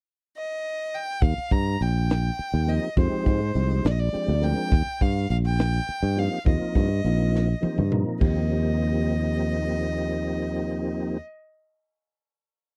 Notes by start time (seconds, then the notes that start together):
0.37 D#5
0.94 G5
1.22 D#2 F5, kick, closed hi-hat
1.38 muted fretless electric bass stroke
1.51 G2 A#5, kick, closed hi-hat
1.81 A#1 G5, closed hi-hat
2.10 snare, closed hi-hat
2.39 muted fretless electric bass stroke, closed hi-hat
2.54 D#2
2.67 F3 A#3 C4 D#4 G4 D#5, closed hi-hat
2.96 F2 F3 G#3 C4 D#4 G4 C5, kick, closed hi-hat
3.12 muted fretless electric bass stroke
3.26 G#2, kick, closed hi-hat
3.54 C2 F3 G#3 C4 D#4 G4, closed hi-hat
3.85 A#1 D5, snare, closed hi-hat
3.91 D#5
3.99 D5
4.12 F3 G#3 C4 D4 G4, muted fretless electric bass stroke, closed hi-hat
4.28 D2
4.41 F3 G#3 C4 D4 A#4 G5, closed hi-hat
4.72 D#2, kick, closed hi-hat
4.87 muted fretless electric bass stroke
5.01 G2 F5, kick, closed hi-hat
5.30 A#1 F5, closed hi-hat
5.45 G5
5.59 snare, closed hi-hat
5.88 muted fretless electric bass stroke, closed hi-hat
6.03 G2
6.16 F3 A#3 C4 D#4 G4 F5, closed hi-hat
6.45 D#2 F3 A#3 C4 D#4 F4 D#5, kick, closed hi-hat
6.62 muted fretless electric bass stroke
6.75 G2, kick, closed hi-hat
7.04 A#1 F3 A#3 C4 D#4 F4, closed hi-hat
7.36 snare
7.61 F3 A#3 C4 D#4 G4, muted fretless electric bass stroke, high tom
7.78 G2, mid tom
7.90 F3 A#3 C4 D#4 A#4, mid tom
8.20 D#2 F3 A#3 C4 D#4 G4 D#5, kick, crash